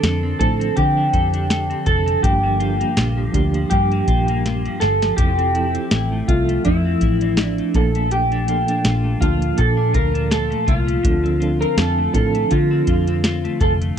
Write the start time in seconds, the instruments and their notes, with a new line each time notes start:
Already playing: clean electric guitar D3 F3 A3 D4 A4, reed electric piano F3 C4 D4 A4
0.03 picked electric bass F2, clean electric guitar A4, snare, closed hi-hat
0.23 clean electric guitar C4
0.38 picked electric bass A2, reed electric piano F3 C4 D4 C5, clean electric guitar A4, kick, closed hi-hat
0.60 clean electric guitar C4, closed hi-hat
0.76 clean electric guitar D3 G4, picked electric bass D3, kick, closed hi-hat
0.97 clean electric guitar D4
1.13 picked electric bass F2, clean electric guitar A4, kick, closed hi-hat
1.34 clean electric guitar D4, closed hi-hat
1.50 clean electric guitar A4, snare, closed hi-hat
1.70 clean electric guitar C4, closed hi-hat
1.86 picked electric bass F1, clean electric guitar A4, kick, closed hi-hat
2.06 clean electric guitar C4, closed hi-hat
2.22 picked electric bass G1, clean electric guitar G2 G4, reed electric piano F3 A#3 D4 G4, kick, closed hi-hat
2.43 clean electric guitar A#3
2.59 reed electric piano F3 A#3 D4 G4, clean electric guitar F4, closed hi-hat
2.80 clean electric guitar A#3, closed hi-hat
2.97 picked electric bass A#1, clean electric guitar F4, snare, closed hi-hat
3.17 clean electric guitar F3
3.32 picked electric bass D2, reed electric piano F3 A#3 D4 G4, clean electric guitar F4, kick, closed hi-hat
3.54 clean electric guitar F3, closed hi-hat
3.70 clean electric guitar G2 G4, picked electric bass G2, kick, closed hi-hat
3.92 clean electric guitar A#3, closed hi-hat
4.08 picked electric bass A#1, clean electric guitar F4, kick, closed hi-hat
4.28 clean electric guitar A#3, closed hi-hat
4.45 clean electric guitar F4, snare, closed hi-hat
4.66 clean electric guitar F3, closed hi-hat
4.80 picked electric bass G1, clean electric guitar F4 A4, snare, closed hi-hat
5.02 clean electric guitar F3, snare, closed hi-hat
5.17 picked electric bass F1, reed electric piano F3 C4 E4 A4, clean electric guitar F3 G4, kick, closed hi-hat
5.38 clean electric guitar C4, closed hi-hat
5.53 reed electric piano F3 C4 E4 A4, clean electric guitar E4, closed hi-hat
5.75 clean electric guitar C4, closed hi-hat
5.91 picked electric bass A1, clean electric guitar E4, snare, closed hi-hat
6.12 clean electric guitar A3
6.28 picked electric bass C2, reed electric piano F3 C4 A4 E5, clean electric guitar F4, kick, closed hi-hat
6.49 clean electric guitar A3, closed hi-hat
6.65 picked electric bass F2, clean electric guitar F3 E4, kick, closed hi-hat
6.85 clean electric guitar C4
7.01 picked electric bass A1, clean electric guitar E4, kick, closed hi-hat
7.21 clean electric guitar C4, closed hi-hat
7.37 clean electric guitar E4, snare, closed hi-hat
7.44 clean electric guitar D4
7.58 clean electric guitar A3, closed hi-hat
7.74 picked electric bass A#1, clean electric guitar A#2 A4, reed electric piano F3 A#3 D4 A4, kick, closed hi-hat
7.95 clean electric guitar A3, closed hi-hat
8.11 clean electric guitar A#2 G4, closed hi-hat
8.32 clean electric guitar D4, closed hi-hat
8.47 reed electric piano F3 A#3 D4 A4, clean electric guitar F4, closed hi-hat
8.68 clean electric guitar D4, closed hi-hat
8.85 picked electric bass A#1, clean electric guitar F4, snare, closed hi-hat
9.04 clean electric guitar A3
9.20 picked electric bass D2, reed electric piano F3 A#3 D4 A5, clean electric guitar F4, kick, closed hi-hat
9.42 closed hi-hat
9.57 clean electric guitar A#2 A4, picked electric bass A#2, kick, closed hi-hat
9.77 clean electric guitar D4
9.94 picked electric bass D2, clean electric guitar F4 A#4, kick, closed hi-hat
10.14 clean electric guitar D4, closed hi-hat
10.31 clean electric guitar F4 A4, snare, closed hi-hat
10.50 clean electric guitar A3, closed hi-hat
10.66 picked electric bass C2, clean electric guitar F4, kick, closed hi-hat
10.88 clean electric guitar A3, closed hi-hat
11.03 picked electric bass D2, clean electric guitar D3, reed electric piano F3 C4 D4 A4, kick, closed hi-hat
11.24 clean electric guitar C4, closed hi-hat
11.40 reed electric piano F3 C4 D4 A4, clean electric guitar F4, closed hi-hat
11.61 clean electric guitar C4 A#4, closed hi-hat
11.78 picked electric bass F2, clean electric guitar F4 A4, snare, closed hi-hat
11.98 clean electric guitar A3
12.13 picked electric bass A2, reed electric piano F3 C4 D4 A4, clean electric guitar F4 A4, kick, closed hi-hat
12.35 clean electric guitar A3, closed hi-hat
12.51 clean electric guitar D3 F4, picked electric bass D3, kick, closed hi-hat
12.71 clean electric guitar C4
12.87 picked electric bass F2, clean electric guitar F4, kick, closed hi-hat
13.07 clean electric guitar C4, closed hi-hat
13.24 clean electric guitar F4, snare, closed hi-hat
13.45 clean electric guitar A3, closed hi-hat
13.61 picked electric bass F1, clean electric guitar F4 A4, kick, closed hi-hat
13.81 clean electric guitar A3, closed hi-hat